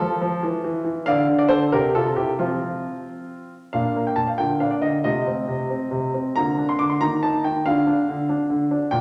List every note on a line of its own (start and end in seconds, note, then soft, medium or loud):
0.00 0.20 F3 medium
0.00 1.04 F4 medium
0.00 0.56 A4 loud
0.21 0.43 F3 medium
0.43 0.63 E3 medium
0.64 0.83 E3 medium
0.84 1.06 E3 medium
1.06 1.26 D3 medium
1.06 1.37 D5 medium
1.06 1.26 F5 loud
1.28 1.47 D3 medium
1.39 1.50 D5 loud
1.49 1.71 D3 medium
1.49 1.70 A4 medium
1.49 1.62 C5 loud
1.72 1.93 C3 medium
1.72 1.93 G4 medium
1.72 1.92 A#4 loud
1.95 2.15 C3 medium
1.95 2.16 F4 medium
1.95 2.08 A4 loud
2.16 2.38 C3 medium
2.16 2.38 E4 medium
2.16 2.30 G4 medium
2.39 2.86 F3 medium
2.39 3.48 C4 medium
2.39 3.52 F4 medium
3.73 3.95 A#2 medium
3.73 3.95 A#3 medium
3.73 4.36 D4 soft
3.73 4.03 F5 medium
3.96 4.17 A#3 medium
4.07 4.18 G5 medium
4.16 4.38 A#2 medium
4.16 4.28 A5 medium
4.27 4.39 F5 medium
4.38 4.60 D3 medium
4.38 5.01 A#3 soft
4.38 5.01 F4 soft
4.38 4.52 G5 medium
4.60 4.82 D4 medium
4.60 4.72 F5 medium
4.71 4.83 D5 medium
4.82 5.04 D3 medium
4.82 4.95 D#5 medium
5.04 5.26 C3 medium
5.04 6.31 A3 soft
5.04 6.31 F4 medium
5.04 6.35 D#5 medium
5.27 5.48 C4 medium
5.48 5.69 C3 medium
5.70 5.91 C4 medium
5.91 6.13 C3 medium
6.14 6.35 C4 medium
6.36 6.57 D3 medium
6.36 6.97 A#3 soft
6.36 6.97 F4 soft
6.36 6.68 A#5 loud
6.57 6.78 D4 medium
6.69 6.79 C6 medium
6.79 7.00 D3 medium
6.79 6.90 D6 loud
6.90 7.00 C6 medium
7.00 7.22 D#3 medium
7.00 7.62 A#3 soft
7.00 7.22 D#4 soft
7.00 7.20 A#5 loud
7.23 7.44 D#4 medium
7.23 7.42 A5 loud
7.44 7.65 D#3 medium
7.44 7.66 G5 medium
7.66 7.86 D3 medium
7.66 7.85 D4 soft
7.66 8.88 F4 medium
7.66 8.42 F5 loud
7.87 8.07 D4 medium
8.09 8.29 D3 medium
8.29 8.49 D4 medium
8.50 8.70 D3 medium
8.71 8.91 D4 medium
8.91 9.01 A#2 medium
8.91 9.01 D4 medium
8.91 9.01 F4 medium
8.91 9.01 G5 loud